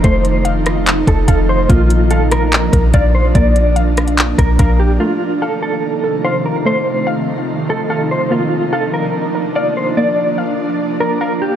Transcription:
<<
  \new Staff \with { instrumentName = "Synth pluck" } { \time 4/4 \key bes \major \tempo 4 = 145 <a a' f''>4 f''4. a'8 f''4 | bes4 f''4. bes'8 f''4 | bes4 f''4. bes'8 f''4 | a4 f''4. a'8 f''4 |
a4 f''4. a'8 f''4 | bes4 f''4. bes'8 f''4 | bes4 f''4. bes'8 f''4 | }
  \new Staff \with { instrumentName = "Clean electric guitar" } { \time 4/4 \key bes \major c''4 r4. a'8 a'8 c''8 | f'4 a'8 bes'4. d''8 c''8 | d''4 r4. bes'8 bes'8 g'8 | f'4 a'8 a'4. c''8 bes'8 |
c''4 r4. a'8 a'8 c''8 | f'4 a'8 bes'4. d''8 c''8 | d''4 r4. bes'8 bes'8 g'8 | }
  \new Staff \with { instrumentName = "Ambient pad" } { \time 4/4 \key bes \major << { <c ees a ees'>1 | <bes d'>1~ | <bes d'>1 | <c ees a ees'>1~ |
<c ees a ees'>1 | <bes d'>1~ | <bes d'>1 | } \\ { f1~ | f1~ | f1 | f1~ |
f1 | f1~ | f1 | } >> }
  \new Staff \with { instrumentName = "808-style bass" } { \clef bass \time 4/4 \key bes \major f,,2~ f,,8 f,,8 f,,4 | bes,,2~ bes,,8 bes,,8 bes,,4 | bes,,2~ bes,,8 bes,,8 bes,,4 | r1 |
r1 | r1 | r1 | }
  \new DrumStaff \with { instrumentName = "Drums" } \drummode { \time 4/4 <hh bd>8 hh8 hh8 <hh ss>8 <hc hh>8 <hh bd>8 <hh bd>4 | <hh bd>8 hh8 hh8 <hh ss>8 <hc hh>8 <hh bd>8 <hh bd>4 | <hh bd>8 hh8 hh8 <hh ss>16 hh16 <hc hh>8 <hh bd>8 <hh bd>4 | r4 r4 r4 r4 |
r4 r4 r4 r4 | r4 r4 r4 r4 | r4 r4 r4 r4 | }
>>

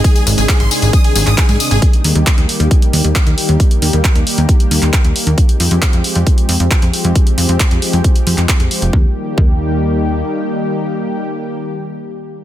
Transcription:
<<
  \new Staff \with { instrumentName = "Supersaw synth" } { \time 4/4 \key ees \major \tempo 4 = 135 aes'16 aes'16 r16 aes'16 aes'16 c'''16 aes'16 aes'16 ees'''16 aes'16 aes'16 ees'''16 aes'16 aes'16 ees'''16 aes'16 | r1 | r1 | r1 |
r1 | r1 | r1 | }
  \new Staff \with { instrumentName = "Analog synth pad" } { \clef bass \time 4/4 \key ees \major <c ees aes d'>16 <c ees aes d'>16 <c ees aes d'>8 <c ees aes d'>8 <c ees aes d'>8 <c ees aes d'>16 <c ees aes d'>8 r16 <c ees aes d'>8 <c ees aes d'>8 | <ees g bes g'>16 <ees g bes g'>16 <ees g bes g'>8 <ees g bes g'>8 <ees g bes g'>8 <ees g bes g'>16 <ees g bes g'>8 r16 <ees g bes g'>8 <ees g bes g'>8 | <ees g bes g'>16 <ees g bes g'>16 <ees g bes g'>8 <ees g bes g'>8 <ees g bes g'>8 <ees g bes g'>16 <ees g bes g'>8 r16 <ees g bes g'>8 <ees g bes g'>8 | <f aes c' g'>16 <f aes c' g'>16 <f aes c' g'>8 <f aes c' g'>8 <f aes c' g'>8 <f aes c' g'>16 <f aes c' g'>8 r16 <f aes c' g'>8 <f aes c' g'>8 |
<f aes c' g'>16 <f aes c' g'>16 <f aes c' g'>8 <f aes c' g'>8 <f aes c' g'>8 <f aes c' g'>16 <f aes c' g'>8 r16 <f aes c' g'>8 <f aes c' g'>8 | <ees g bes g'>1~ | <ees g bes g'>1 | }
  \new Staff \with { instrumentName = "Analog synth bass" } { \clef bass \time 4/4 \key ees \major r8 aes,,16 aes,,16 r16 aes,,16 r16 aes,,16 r8 aes,,16 aes,,16 r16 aes,16 r16 aes,,16 | r8 ees,16 ees,16 r16 ees,16 r16 ees,16 r8 ees,16 ees,16 r16 ees,16 r16 ees,16 | r8 ees,16 ees,16 r16 ees,16 r16 ees,16 r8 ees,16 ees,16 r16 ees,16 r16 ees,16 | r8 f,16 f,16 r16 f,16 r16 f,16 r8 f,16 f,16 r16 f,16 r16 f,16 |
r8 f,16 f,16 r16 f,16 r16 f,16 r8 f,16 f,16 r16 f,16 r16 f,,16 | ees,16 r8. ees,2 r4 | r1 | }
  \new DrumStaff \with { instrumentName = "Drums" } \drummode { \time 4/4 <hh bd tamb>16 <hh tamb>16 <hho tamb>16 <hh tamb>16 <hc hh bd tamb>16 hh16 <hho tamb>16 <hh tamb>16 <hh bd tamb>16 hh16 <hho tamb>16 <hc hh tamb>16 <hc hh bd tamb>16 <hh tamb>16 <hho tamb>16 <hh tamb>16 | <hh bd>16 hh16 hho16 hh16 <hc hh bd>16 hh16 hho16 hh16 <hh bd>16 hh16 hho16 hh16 <hc hh bd>16 hh16 hho16 hh16 | <hh bd>16 hh16 hho16 hh16 <hc hh bd>16 hh16 hho16 hh16 <hh bd>16 hh16 hho16 <hc hh>16 <hc hh bd>16 hh16 hho16 hh16 | <hh bd>16 hh16 hho16 hh16 <hc hh bd>16 hh16 hho16 hh16 <hh bd>16 hh16 hho16 hh16 <hc hh bd>16 hh16 hho16 hh16 |
<hh bd>16 hh16 hho16 hh16 <hc hh bd>16 hh16 hho16 hh16 <hh bd>16 hh16 hho16 <hc hh>16 <hc hh bd>16 hh16 hho16 hh16 | bd4 bd4 r4 r4 | r4 r4 r4 r4 | }
>>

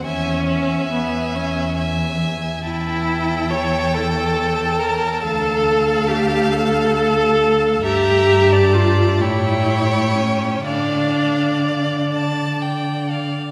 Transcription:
<<
  \new Staff \with { instrumentName = "Violin" } { \time 6/8 \key cis \phrygian \tempo 4. = 46 gis''8 gis''4. gis''4 | \key d \minor a''2.~ | a''2. | bes''8. a''8. g''4. |
f''4. a''8 g''8 f''8 | }
  \new Staff \with { instrumentName = "Violin" } { \time 6/8 \key cis \phrygian e''8 e''4. e''4 | \key d \minor g''2. | f''2. | e''8. d''8. cis''4. |
d''2~ d''8. r16 | }
  \new Staff \with { instrumentName = "Viola" } { \time 6/8 \key cis \phrygian cis'4 b8 cis'8 r4 | \key d \minor e'4 cis''8 a'4 bes'8 | a'4 g'8 a'4. | g'4 f'8 e'4 cis'8 |
d'4. r4. | }
  \new Staff \with { instrumentName = "Cello" } { \clef bass \time 6/8 \key cis \phrygian e,4. e,4. | \key d \minor e,2. | d,2. | g,4. a,4. |
d2. | }
>>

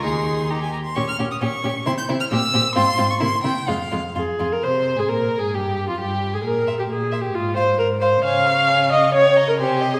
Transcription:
<<
  \new Staff \with { instrumentName = "Violin" } { \time 2/4 \key ees \mixolydian \tempo 4 = 133 c'''4 bes''16 aes''16 bes''16 c'''16 | \key f \minor des'''16 f'''8 ees'''16 des'''4 | c'''16 g'''8 f'''16 e'''4 | c'''8. des'''16 c'''8 g''8 |
f''4 r4 | c''8. aes'16 \tuplet 3/2 { bes'4 aes'8 } | g'8. f'16 g'8. aes'16 | r8 c'''8 r8 c'''8 |
r8 c'''8 r8 c'''8 | \key des \lydian aes''8 des'''8 aes''8 des'''8 | g''8 bes''8 aes''8 c'''8 | }
  \new Staff \with { instrumentName = "Viola" } { \time 2/4 \key ees \mixolydian ees'4 ees'8 r8 | \key f \minor des'8 des'8 des'8 des'8 | c'8 c'8 c'8 c'8 | c'8 c'8 bes8 bes8 |
aes8 aes8 aes'8. bes'16 | c''8. aes'16 \tuplet 3/2 { bes'4 aes'8 } | g'8. f'16 g'8. aes'16 | bes'8. g'16 \tuplet 3/2 { aes'4 g'8 } |
f'8 c''8 bes'8 c''8 | \key des \lydian f''4. ees''8 | des''8. bes'16 g'8. aes'16 | }
  \new Staff \with { instrumentName = "Violin" } { \time 2/4 \key ees \mixolydian aes'4 g'8 r8 | \key f \minor g'8 g'8 g'8 g'8 | e'8 e'8 g'8 g'8 | f'8 f'8 e'8 e'8 |
f'8 f'8 f'8 f'8 | c''8. aes'16 \tuplet 3/2 { bes'4 aes'8 } | g'8. f'16 g'8. aes'16 | r8 e''8 r8 e''8 |
r8 f''8 r8 f''8 | \key des \lydian des''8 f''8 des''8 f''8 | des''8 ees''8 c''8 ees''8 | }
  \new Staff \with { instrumentName = "Cello" } { \clef bass \time 2/4 \key ees \mixolydian ees,4. r8 | \key f \minor bes,8 bes,8 bes,8 bes,8 | c8 c8 bes,8 bes,8 | aes,8 aes,8 c8 c8 |
f,8 f,8 f,8 f,8 | c8. aes,16 \tuplet 3/2 { bes,4 aes,8 } | g,8. f,16 g,8. aes,16 | bes,4 bes,4 |
aes,4 aes,4 | \key des \lydian des2~ | des4 c4 | }
>>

